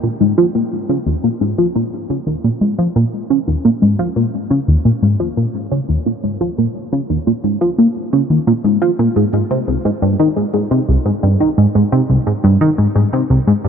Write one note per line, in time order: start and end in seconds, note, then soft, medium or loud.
0.03 0.08 A#2 medium
0.21 0.33 G#2 medium
0.38 0.46 F3 medium
0.55 0.63 A#2 medium
0.89 0.98 C#3 medium
1.06 1.15 D#2 medium
1.24 1.29 A#2 medium
1.41 1.54 G#2 medium
1.58 1.67 F3 medium
1.76 1.84 A#2 medium
2.10 2.19 C#3 medium
2.27 2.36 D#2 medium
2.44 2.50 A#2 medium
2.61 2.74 G#2 medium
2.79 2.87 F3 medium
2.96 3.05 A#2 medium
3.30 3.39 C#3 medium
3.48 3.56 D#2 medium
3.65 3.70 A#2 medium
3.82 3.95 G#2 medium
3.99 4.08 F3 medium
4.16 4.25 A#2 medium
4.50 4.59 C#3 medium
4.68 4.77 D#2 medium
4.85 4.91 A#2 medium
5.03 5.16 G#2 medium
5.20 5.29 F3 medium
5.37 5.46 A#2 medium
5.72 5.80 C#3 medium
5.89 5.98 D#2 medium
6.06 6.12 A#2 medium
6.24 6.36 G#2 medium
6.41 6.49 F3 medium
6.58 6.67 A#2 medium
6.93 7.01 C#3 medium
7.10 7.18 D#2 medium
7.27 7.32 A#2 medium
7.44 7.57 G#2 medium
7.61 7.70 F3 medium
7.78 7.87 A#2 medium
8.13 8.22 C#3 medium
8.30 8.39 D#2 medium
8.47 8.53 A#2 medium
8.64 8.78 G#2 medium
8.82 8.91 F3 medium
8.99 9.08 A#2 medium
9.16 9.25 G#2 medium
9.33 9.42 G#2 medium
9.51 9.60 C3 medium
9.68 9.77 C2 medium
9.85 9.91 G#2 medium
10.02 10.15 G2 medium
10.20 10.28 D#3 medium
10.36 10.46 G#2 medium
10.54 10.63 G#2 medium
10.71 10.80 C3 medium
10.89 10.97 C2 medium
11.06 11.11 G#2 medium
11.23 11.36 G2 medium
11.40 11.49 D#3 medium
11.58 11.67 G#2 medium
11.75 11.84 G#2 medium
11.92 12.01 C3 medium
12.10 12.18 C2 medium
12.27 12.32 G#2 medium
12.44 12.57 G2 medium
12.61 12.70 D#3 medium
12.78 12.87 G#2 medium
12.96 13.04 G#2 medium
13.13 13.22 C3 medium
13.30 13.39 C2 medium
13.47 13.53 G#2 medium
13.65 13.69 G2 medium